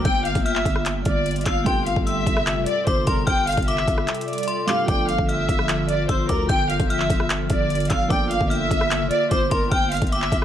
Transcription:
Already playing: D3 G3 A#3 F4 G4
0.05 G1 G5 G6, kick, closed hi-hat
0.25 F5, closed hi-hat
0.35 G1, kick, closed hi-hat
0.45 E5 F6, closed hi-hat
0.56 clap
0.65 G1, kick, closed hi-hat
0.76 cross-stick
0.86 clap, closed hi-hat
1.05 G1 D5, kick, closed hi-hat
1.26 closed hi-hat
1.31 closed hi-hat
1.36 closed hi-hat
1.41 closed hi-hat
1.46 G1 F5 E6, kick, clap, closed hi-hat
1.64 G1 G2 C3 A3 F4 A4 G5 C6, kick, closed hi-hat
1.69 G4
1.86 F5, closed hi-hat
1.96 G1, kick
2.06 E5 E6, closed hi-hat
2.27 G1, kick, closed hi-hat
2.37 cross-stick
2.47 clap, closed hi-hat
2.57 F1
2.66 D5, closed hi-hat
2.87 G1 C5 D6, kick, closed hi-hat
3.07 G1 A#4 C6, kick, closed hi-hat
3.27 G1 G5 F6, kick, closed hi-hat
3.47 F5, closed hi-hat, open hi-hat
3.52 closed hi-hat
3.57 G1, kick, closed hi-hat
3.62 closed hi-hat
3.68 E5 D6, closed hi-hat
3.78 clap
3.88 G1, kick, closed hi-hat
3.98 cross-stick
4.08 clap, closed hi-hat
4.15 closed hi-hat
4.21 closed hi-hat
4.28 D5, closed hi-hat
4.33 closed hi-hat
4.38 closed hi-hat
4.43 closed hi-hat
4.48 C6, closed hi-hat
4.67 G2 C3 A3 F4 G4 F5 D6, clap, closed hi-hat
4.86 G1 D3 F3 A3 D4 F4 A4 G5 D6, kick, closed hi-hat
4.91 D5
5.08 F5, closed hi-hat
5.19 G1, kick
5.29 E5 F6, closed hi-hat
5.49 G1, kick, closed hi-hat
5.59 cross-stick
5.69 clap, closed hi-hat
5.89 D5, closed hi-hat
6.09 G1 C5 E6, kick, closed hi-hat
6.29 D2 A#4 D6, kick, closed hi-hat
6.49 G1 G5 G6, kick, closed hi-hat
6.70 F5, closed hi-hat
6.80 G1, kick, closed hi-hat
6.90 E5 F6, closed hi-hat
7.00 clap
7.10 G1, kick, closed hi-hat
7.20 cross-stick
7.30 clap, closed hi-hat
7.50 G1 D5, kick, closed hi-hat
7.70 closed hi-hat
7.75 closed hi-hat
7.80 closed hi-hat
7.85 closed hi-hat
7.90 G1 F5 E6, kick, clap, closed hi-hat
8.08 G1 F3 A#3 D4 F4 A4 G5 D6, kick, closed hi-hat
8.12 D5
8.31 F5, closed hi-hat
8.41 G1, kick
8.50 E5 F6, closed hi-hat
8.71 G1, kick, closed hi-hat
8.81 cross-stick
8.91 clap, closed hi-hat
9.01 F1
9.11 D5, closed hi-hat
9.31 G1 C5 D6, kick, closed hi-hat
9.51 G1 A#4 C6, kick, closed hi-hat
9.71 G1 G5 F6, kick, closed hi-hat
9.92 F5, closed hi-hat, open hi-hat
9.97 closed hi-hat
10.02 G1, kick, closed hi-hat
10.07 closed hi-hat
10.12 E5 D6, closed hi-hat
10.22 clap
10.32 G1, kick, closed hi-hat

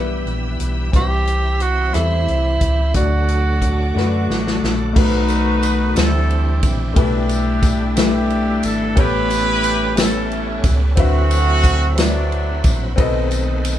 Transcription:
Already playing: B1 G2 E3 G3 B3 E4 G4 B4 E5 B5 E6
0.26 A#1, closed hi-hat
0.60 B1, closed hi-hat
0.91 C2 C3 E3 G3 C4 E4 B4 E5 C6, kick, closed hi-hat
0.95 G3 C4 E4 G4
1.02 C5
1.27 closed hi-hat
1.60 F#4, closed hi-hat
1.92 E2 G3 C4 E4 A4, cross-stick, closed hi-hat
2.28 C2, closed hi-hat
2.61 C#2, kick, closed hi-hat
2.94 D2 D3 F#3 A3 D4 F4 F#4 D5 F#5 A5 D6, kick, closed hi-hat
3.01 F#4
3.29 closed hi-hat
3.62 kick, closed hi-hat
3.94 F#2 A3 D4 F#4 B4, snare
4.29 A1 F#5, snare
4.47 snare
4.63 A#1 A4 D5, snare
4.93 B1 B2 A3 D#4 F4 F#4 B4, kick, crash
4.97 D#3 A3 B3 D#4 F#4
5.04 F#4
5.28 ride, tambourine
5.63 ride, tambourine
5.95 D2 D3 E3 F#3 C4 D4 E4 F#4 A4 C5, snare, ride, tambourine
5.99 G3 C4
6.05 G4
6.30 ride
6.63 A#1, kick, ride, tambourine
6.94 B1 B2 G3 A3 B3 E4 G4 A4 B4, kick, ride
6.99 D4 E4 G4
7.29 ride, tambourine
7.62 kick, ride, tambourine
7.96 A3 D4 E4 G4 B4, snare, ride, tambourine
8.30 ride
8.63 G#1 A4, ride, tambourine
8.95 A1 A2 G3 B3 C#4 E4 G4 G#4 A4 B4 C#5, kick, ride
9.04 A4
9.30 ride, tambourine
9.63 ride, tambourine
9.95 B3 G4 A4 B4, snare, ride, tambourine
9.99 C#4 E4 A4
10.31 ride
10.64 C#2, kick, ride, tambourine
10.96 D2 D3 E3 A3 C4 E4 F#4 B4 E5, kick, ride
11.03 F#3
11.31 ride, tambourine
11.63 kick, ride, tambourine
11.96 C4 D4 F#4 B4 D5, snare, ride, tambourine
12.00 F#3 A3
12.32 ride
12.64 A#1, kick, ride, tambourine
12.96 B1 B2 D#3 A3 C4 A4 B4 D#5, kick, ride
13.31 ride, tambourine
13.65 ride, tambourine

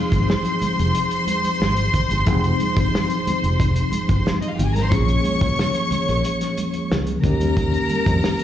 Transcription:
Already playing: F3 C4 D#4 G#4 C5 C6
0.12 G#1, kick, closed hi-hat
0.28 snare, muted conga
0.45 closed hi-hat
0.62 muted fingered electric bass stroke, closed hi-hat, muted conga, high conga, low conga
0.79 F1, closed hi-hat
0.95 closed hi-hat, muted conga
1.11 closed hi-hat
1.27 closed hi-hat, muted conga, high conga
1.44 closed hi-hat, high conga
1.60 G#1, snare, muted conga, high conga
1.77 closed hi-hat
1.94 kick, closed hi-hat, muted conga, low conga
2.10 G1, closed hi-hat, high conga
2.26 F1 F3 C4 D#4 G#4, kick, closed hi-hat, muted conga, low conga
2.44 closed hi-hat
2.60 closed hi-hat, muted conga, high conga
2.77 G1, kick, closed hi-hat
2.94 snare, muted conga
3.10 closed hi-hat
3.27 muted fingered electric bass stroke, closed hi-hat, muted conga, high conga, low conga
3.43 F1, closed hi-hat
3.60 kick, closed hi-hat
3.76 closed hi-hat
3.92 muted fingered electric bass stroke, closed hi-hat, muted conga, high conga
4.09 G1, kick, closed hi-hat, high conga
4.26 snare, muted conga, high conga
4.42 D#4 D#5, closed hi-hat
4.50 F4 F5
4.59 G#1 G4 G5, closed hi-hat, muted conga, low conga
4.67 G#4 G#5
4.75 A#4 A#5, snare, closed hi-hat, high conga
4.84 C5 C6
4.90 A#1 F3 A#3 C#4 G#4 C#5 C#6, kick, closed hi-hat, low conga
5.09 closed hi-hat
5.24 closed hi-hat, muted conga, high conga
5.41 C#2, kick, closed hi-hat
5.59 snare
5.75 closed hi-hat
5.91 muted fingered electric bass stroke, closed hi-hat, muted conga, high conga, low conga
6.09 A#1, closed hi-hat
6.24 closed hi-hat, muted conga
6.41 snare, closed hi-hat
6.58 closed hi-hat, high conga
6.74 closed hi-hat, high conga
6.91 C#2, snare, muted conga, high conga
7.07 closed hi-hat
7.22 D#2 D#3 A#3 C#4 G4 A#4 A#5, kick, closed hi-hat, muted conga, low conga
7.40 closed hi-hat, high conga
7.57 kick, closed hi-hat, muted conga, low conga
7.74 closed hi-hat
7.90 closed hi-hat, muted conga, high conga
8.06 F2, kick, closed hi-hat
8.24 snare
8.39 closed hi-hat

